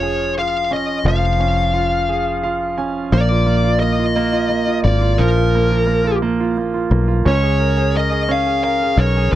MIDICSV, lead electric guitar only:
0, 0, Header, 1, 2, 480
1, 0, Start_track
1, 0, Tempo, 688863
1, 733, Time_signature, 6, 3, 24, 8
1, 6517, End_track
2, 0, Start_track
2, 0, Title_t, "Lead electric guitar"
2, 0, Program_c, 0, 29
2, 0, Note_on_c, 0, 73, 88
2, 234, Note_off_c, 0, 73, 0
2, 269, Note_on_c, 0, 77, 89
2, 506, Note_off_c, 0, 77, 0
2, 508, Note_on_c, 0, 75, 78
2, 748, Note_off_c, 0, 75, 0
2, 750, Note_on_c, 0, 77, 84
2, 1914, Note_off_c, 0, 77, 0
2, 2183, Note_on_c, 0, 74, 97
2, 2631, Note_off_c, 0, 74, 0
2, 2646, Note_on_c, 0, 75, 101
2, 3342, Note_off_c, 0, 75, 0
2, 3372, Note_on_c, 0, 74, 92
2, 3609, Note_on_c, 0, 70, 81
2, 3620, Note_off_c, 0, 74, 0
2, 4303, Note_off_c, 0, 70, 0
2, 5069, Note_on_c, 0, 73, 96
2, 5550, Note_off_c, 0, 73, 0
2, 5553, Note_on_c, 0, 75, 90
2, 5790, Note_off_c, 0, 75, 0
2, 5792, Note_on_c, 0, 77, 100
2, 6011, Note_off_c, 0, 77, 0
2, 6019, Note_on_c, 0, 77, 101
2, 6261, Note_on_c, 0, 73, 82
2, 6263, Note_off_c, 0, 77, 0
2, 6489, Note_off_c, 0, 73, 0
2, 6517, End_track
0, 0, End_of_file